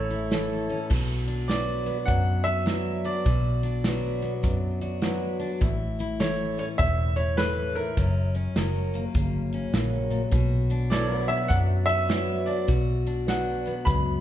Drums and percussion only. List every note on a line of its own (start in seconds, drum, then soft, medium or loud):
0.10 closed hi-hat medium
0.32 snare loud
0.32 closed hi-hat medium
0.69 closed hi-hat medium
0.91 kick loud
0.91 crash loud
1.28 closed hi-hat medium
1.50 snare loud
1.50 closed hi-hat medium
1.87 closed hi-hat medium
2.08 kick loud
2.08 closed hi-hat medium
2.46 closed hi-hat medium
2.67 snare loud
2.67 closed hi-hat medium
3.05 closed hi-hat medium
3.26 kick loud
3.26 closed hi-hat medium
3.63 closed hi-hat medium
3.84 snare loud
3.84 closed hi-hat medium
4.22 closed hi-hat medium
4.44 kick loud
4.44 closed hi-hat medium
4.81 closed hi-hat medium
5.02 snare loud
5.02 closed hi-hat medium
5.40 closed hi-hat medium
5.61 kick loud
5.61 closed hi-hat medium
5.99 closed hi-hat medium
6.20 snare loud
6.20 closed hi-hat medium
6.58 closed hi-hat medium
6.79 kick loud
6.79 closed hi-hat medium
7.17 closed hi-hat medium
7.38 snare loud
7.38 closed hi-hat medium
7.76 closed hi-hat medium
7.97 kick loud
7.97 closed hi-hat medium
8.35 closed hi-hat medium
8.56 snare loud
8.56 closed hi-hat medium
8.94 closed hi-hat medium
9.15 kick loud
9.15 closed hi-hat medium
9.53 closed hi-hat medium
9.74 snare loud
9.74 closed hi-hat medium
10.11 closed hi-hat medium
10.32 kick loud
10.32 closed hi-hat medium
10.70 closed hi-hat medium
10.92 snare loud
10.92 closed hi-hat medium
11.29 closed hi-hat medium
11.50 kick loud
11.50 closed hi-hat medium
11.89 closed hi-hat medium
12.10 snare loud
12.10 closed hi-hat medium
12.47 closed hi-hat medium
12.68 kick loud
12.68 closed hi-hat medium
13.07 closed hi-hat medium
13.28 snare loud
13.28 closed hi-hat medium
13.66 closed hi-hat medium
13.87 kick loud
13.87 closed hi-hat medium